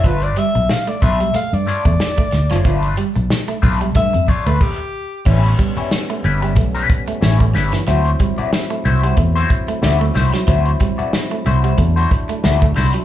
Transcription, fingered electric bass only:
0, 0, Header, 1, 3, 480
1, 0, Start_track
1, 0, Tempo, 652174
1, 32, Time_signature, 4, 2, 24, 8
1, 9603, End_track
2, 0, Start_track
2, 0, Title_t, "Fingered electric bass"
2, 0, Program_c, 0, 33
2, 32, Note_on_c, 0, 31, 108
2, 226, Note_off_c, 0, 31, 0
2, 409, Note_on_c, 0, 35, 93
2, 493, Note_off_c, 0, 35, 0
2, 755, Note_on_c, 0, 35, 88
2, 948, Note_off_c, 0, 35, 0
2, 1126, Note_on_c, 0, 43, 94
2, 1212, Note_off_c, 0, 43, 0
2, 1367, Note_on_c, 0, 40, 91
2, 1453, Note_off_c, 0, 40, 0
2, 1717, Note_on_c, 0, 38, 90
2, 1824, Note_off_c, 0, 38, 0
2, 1852, Note_on_c, 0, 30, 93
2, 1936, Note_off_c, 0, 30, 0
2, 1953, Note_on_c, 0, 31, 106
2, 2147, Note_off_c, 0, 31, 0
2, 2327, Note_on_c, 0, 35, 84
2, 2413, Note_off_c, 0, 35, 0
2, 2675, Note_on_c, 0, 35, 92
2, 2869, Note_off_c, 0, 35, 0
2, 2911, Note_on_c, 0, 43, 115
2, 3047, Note_on_c, 0, 41, 76
2, 3058, Note_off_c, 0, 43, 0
2, 3133, Note_off_c, 0, 41, 0
2, 3286, Note_on_c, 0, 38, 85
2, 3372, Note_off_c, 0, 38, 0
2, 3876, Note_on_c, 0, 33, 110
2, 4069, Note_off_c, 0, 33, 0
2, 4597, Note_on_c, 0, 31, 97
2, 4835, Note_off_c, 0, 31, 0
2, 4835, Note_on_c, 0, 35, 102
2, 5028, Note_off_c, 0, 35, 0
2, 5317, Note_on_c, 0, 33, 94
2, 5554, Note_on_c, 0, 31, 98
2, 5565, Note_off_c, 0, 33, 0
2, 5662, Note_off_c, 0, 31, 0
2, 5799, Note_on_c, 0, 38, 106
2, 5990, Note_off_c, 0, 38, 0
2, 6518, Note_on_c, 0, 36, 85
2, 6709, Note_off_c, 0, 36, 0
2, 6755, Note_on_c, 0, 40, 92
2, 6947, Note_off_c, 0, 40, 0
2, 7239, Note_on_c, 0, 38, 100
2, 7430, Note_off_c, 0, 38, 0
2, 7476, Note_on_c, 0, 36, 95
2, 7583, Note_off_c, 0, 36, 0
2, 7713, Note_on_c, 0, 38, 104
2, 7906, Note_off_c, 0, 38, 0
2, 8439, Note_on_c, 0, 36, 95
2, 8630, Note_off_c, 0, 36, 0
2, 8674, Note_on_c, 0, 40, 92
2, 8867, Note_off_c, 0, 40, 0
2, 9163, Note_on_c, 0, 38, 103
2, 9353, Note_off_c, 0, 38, 0
2, 9399, Note_on_c, 0, 36, 104
2, 9505, Note_off_c, 0, 36, 0
2, 9603, End_track
3, 0, Start_track
3, 0, Title_t, "Muted fingered electric bass strokes"
3, 994, Note_on_c, 9, 29, 47
3, 1067, Note_off_c, 9, 29, 0
3, 4247, Note_on_c, 9, 29, 52
3, 4321, Note_off_c, 9, 29, 0
3, 6175, Note_on_c, 9, 29, 50
3, 6248, Note_off_c, 9, 29, 0
3, 8096, Note_on_c, 9, 29, 52
3, 8170, Note_off_c, 9, 29, 0
3, 9603, End_track
0, 0, End_of_file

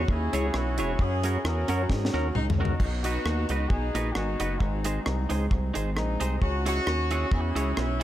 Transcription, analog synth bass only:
0, 0, Header, 1, 2, 480
1, 0, Start_track
1, 0, Key_signature, 5, "major"
1, 0, Tempo, 452148
1, 1047, Time_signature, 4, 2, 24, 8
1, 8525, End_track
2, 0, Start_track
2, 0, Title_t, "Analog synth bass"
2, 0, Program_c, 0, 38
2, 95, Note_on_c, 0, 39, 96
2, 310, Note_off_c, 0, 39, 0
2, 352, Note_on_c, 0, 37, 87
2, 538, Note_off_c, 0, 37, 0
2, 575, Note_on_c, 0, 35, 91
2, 840, Note_on_c, 0, 28, 86
2, 856, Note_off_c, 0, 35, 0
2, 1023, Note_off_c, 0, 28, 0
2, 1056, Note_on_c, 0, 42, 119
2, 1460, Note_off_c, 0, 42, 0
2, 1535, Note_on_c, 0, 40, 101
2, 1750, Note_off_c, 0, 40, 0
2, 1794, Note_on_c, 0, 42, 86
2, 1979, Note_off_c, 0, 42, 0
2, 2019, Note_on_c, 0, 44, 95
2, 2232, Note_off_c, 0, 44, 0
2, 2272, Note_on_c, 0, 39, 87
2, 2458, Note_off_c, 0, 39, 0
2, 2498, Note_on_c, 0, 37, 89
2, 2902, Note_off_c, 0, 37, 0
2, 2974, Note_on_c, 0, 35, 117
2, 3380, Note_off_c, 0, 35, 0
2, 3455, Note_on_c, 0, 39, 108
2, 3671, Note_off_c, 0, 39, 0
2, 3712, Note_on_c, 0, 37, 92
2, 3899, Note_off_c, 0, 37, 0
2, 3932, Note_on_c, 0, 35, 104
2, 4149, Note_off_c, 0, 35, 0
2, 4190, Note_on_c, 0, 34, 85
2, 4378, Note_off_c, 0, 34, 0
2, 4413, Note_on_c, 0, 32, 77
2, 4630, Note_off_c, 0, 32, 0
2, 4674, Note_on_c, 0, 30, 84
2, 4860, Note_off_c, 0, 30, 0
2, 4895, Note_on_c, 0, 32, 124
2, 5300, Note_off_c, 0, 32, 0
2, 5378, Note_on_c, 0, 36, 111
2, 5593, Note_off_c, 0, 36, 0
2, 5634, Note_on_c, 0, 37, 99
2, 5820, Note_off_c, 0, 37, 0
2, 5854, Note_on_c, 0, 36, 93
2, 6070, Note_off_c, 0, 36, 0
2, 6115, Note_on_c, 0, 32, 78
2, 6340, Note_on_c, 0, 34, 93
2, 6355, Note_off_c, 0, 32, 0
2, 6553, Note_off_c, 0, 34, 0
2, 6592, Note_on_c, 0, 36, 84
2, 6779, Note_off_c, 0, 36, 0
2, 6814, Note_on_c, 0, 37, 118
2, 7219, Note_off_c, 0, 37, 0
2, 7293, Note_on_c, 0, 39, 84
2, 7698, Note_off_c, 0, 39, 0
2, 7770, Note_on_c, 0, 40, 98
2, 7987, Note_off_c, 0, 40, 0
2, 8022, Note_on_c, 0, 37, 87
2, 8212, Note_off_c, 0, 37, 0
2, 8253, Note_on_c, 0, 35, 94
2, 8521, Note_off_c, 0, 35, 0
2, 8525, End_track
0, 0, End_of_file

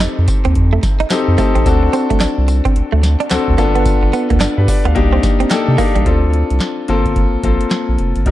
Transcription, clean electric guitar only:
0, 0, Header, 1, 3, 480
1, 0, Start_track
1, 0, Tempo, 550459
1, 1445, Time_signature, 4, 2, 24, 8
1, 7246, End_track
2, 0, Start_track
2, 0, Title_t, "Clean electric guitar"
2, 0, Program_c, 0, 27
2, 3, Note_on_c, 0, 63, 87
2, 121, Note_off_c, 0, 63, 0
2, 393, Note_on_c, 0, 60, 82
2, 465, Note_off_c, 0, 60, 0
2, 634, Note_on_c, 0, 57, 73
2, 706, Note_off_c, 0, 57, 0
2, 873, Note_on_c, 0, 63, 81
2, 946, Note_off_c, 0, 63, 0
2, 1205, Note_on_c, 0, 57, 93
2, 1322, Note_off_c, 0, 57, 0
2, 1354, Note_on_c, 0, 60, 83
2, 1426, Note_off_c, 0, 60, 0
2, 1685, Note_on_c, 0, 60, 89
2, 1802, Note_off_c, 0, 60, 0
2, 1833, Note_on_c, 0, 57, 83
2, 1906, Note_off_c, 0, 57, 0
2, 1924, Note_on_c, 0, 62, 85
2, 2041, Note_off_c, 0, 62, 0
2, 2312, Note_on_c, 0, 60, 80
2, 2385, Note_off_c, 0, 60, 0
2, 2550, Note_on_c, 0, 57, 72
2, 2623, Note_off_c, 0, 57, 0
2, 2792, Note_on_c, 0, 62, 78
2, 2865, Note_off_c, 0, 62, 0
2, 3124, Note_on_c, 0, 58, 87
2, 3241, Note_off_c, 0, 58, 0
2, 3273, Note_on_c, 0, 59, 81
2, 3346, Note_off_c, 0, 59, 0
2, 3605, Note_on_c, 0, 59, 85
2, 3722, Note_off_c, 0, 59, 0
2, 3752, Note_on_c, 0, 58, 77
2, 3825, Note_off_c, 0, 58, 0
2, 3842, Note_on_c, 0, 62, 88
2, 3961, Note_off_c, 0, 62, 0
2, 4233, Note_on_c, 0, 59, 81
2, 4305, Note_off_c, 0, 59, 0
2, 4470, Note_on_c, 0, 60, 72
2, 4544, Note_off_c, 0, 60, 0
2, 4710, Note_on_c, 0, 60, 74
2, 4784, Note_off_c, 0, 60, 0
2, 5043, Note_on_c, 0, 58, 88
2, 5161, Note_off_c, 0, 58, 0
2, 5192, Note_on_c, 0, 55, 80
2, 5265, Note_off_c, 0, 55, 0
2, 7246, End_track
3, 0, Start_track
3, 0, Title_t, "Muted clean electric guitar strokes"
3, 246, Note_on_c, 9, 29, 47
3, 334, Note_off_c, 9, 29, 0
3, 724, Note_on_c, 9, 29, 49
3, 812, Note_off_c, 9, 29, 0
3, 965, Note_on_c, 9, 29, 46
3, 1052, Note_off_c, 9, 29, 0
3, 1595, Note_on_c, 9, 29, 48
3, 1682, Note_off_c, 9, 29, 0
3, 2164, Note_on_c, 9, 29, 51
3, 2251, Note_off_c, 9, 29, 0
3, 2644, Note_on_c, 9, 29, 46
3, 2731, Note_off_c, 9, 29, 0
3, 2883, Note_on_c, 9, 29, 48
3, 2970, Note_off_c, 9, 29, 0
3, 3512, Note_on_c, 9, 29, 48
3, 3599, Note_off_c, 9, 29, 0
3, 4084, Note_on_c, 9, 29, 49
3, 4171, Note_off_c, 9, 29, 0
3, 4564, Note_on_c, 9, 29, 48
3, 4652, Note_off_c, 9, 29, 0
3, 4802, Note_on_c, 9, 29, 45
3, 4889, Note_off_c, 9, 29, 0
3, 7246, End_track
0, 0, End_of_file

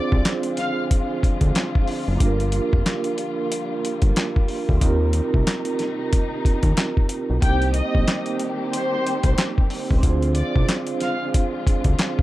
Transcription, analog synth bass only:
0, 0, Header, 1, 2, 480
1, 0, Start_track
1, 0, Tempo, 652174
1, 1624, Time_signature, 4, 2, 24, 8
1, 8997, End_track
2, 0, Start_track
2, 0, Title_t, "Analog synth bass"
2, 0, Program_c, 0, 38
2, 91, Note_on_c, 0, 36, 92
2, 164, Note_off_c, 0, 36, 0
2, 1042, Note_on_c, 0, 38, 91
2, 1118, Note_off_c, 0, 38, 0
2, 1530, Note_on_c, 0, 30, 90
2, 1603, Note_off_c, 0, 30, 0
2, 1625, Note_on_c, 0, 31, 107
2, 1916, Note_off_c, 0, 31, 0
2, 2012, Note_on_c, 0, 29, 90
2, 2084, Note_off_c, 0, 29, 0
2, 2962, Note_on_c, 0, 31, 97
2, 3038, Note_off_c, 0, 31, 0
2, 3454, Note_on_c, 0, 38, 91
2, 3525, Note_off_c, 0, 38, 0
2, 3546, Note_on_c, 0, 39, 117
2, 3836, Note_off_c, 0, 39, 0
2, 3933, Note_on_c, 0, 36, 90
2, 4005, Note_off_c, 0, 36, 0
2, 4882, Note_on_c, 0, 39, 92
2, 4958, Note_off_c, 0, 39, 0
2, 5371, Note_on_c, 0, 35, 83
2, 5443, Note_off_c, 0, 35, 0
2, 5465, Note_on_c, 0, 36, 108
2, 5755, Note_off_c, 0, 36, 0
2, 5851, Note_on_c, 0, 34, 92
2, 5924, Note_off_c, 0, 34, 0
2, 6801, Note_on_c, 0, 36, 90
2, 6878, Note_off_c, 0, 36, 0
2, 7293, Note_on_c, 0, 37, 85
2, 7365, Note_off_c, 0, 37, 0
2, 7386, Note_on_c, 0, 38, 110
2, 7676, Note_off_c, 0, 38, 0
2, 7772, Note_on_c, 0, 36, 93
2, 7844, Note_off_c, 0, 36, 0
2, 8722, Note_on_c, 0, 38, 91
2, 8798, Note_off_c, 0, 38, 0
2, 8997, End_track
0, 0, End_of_file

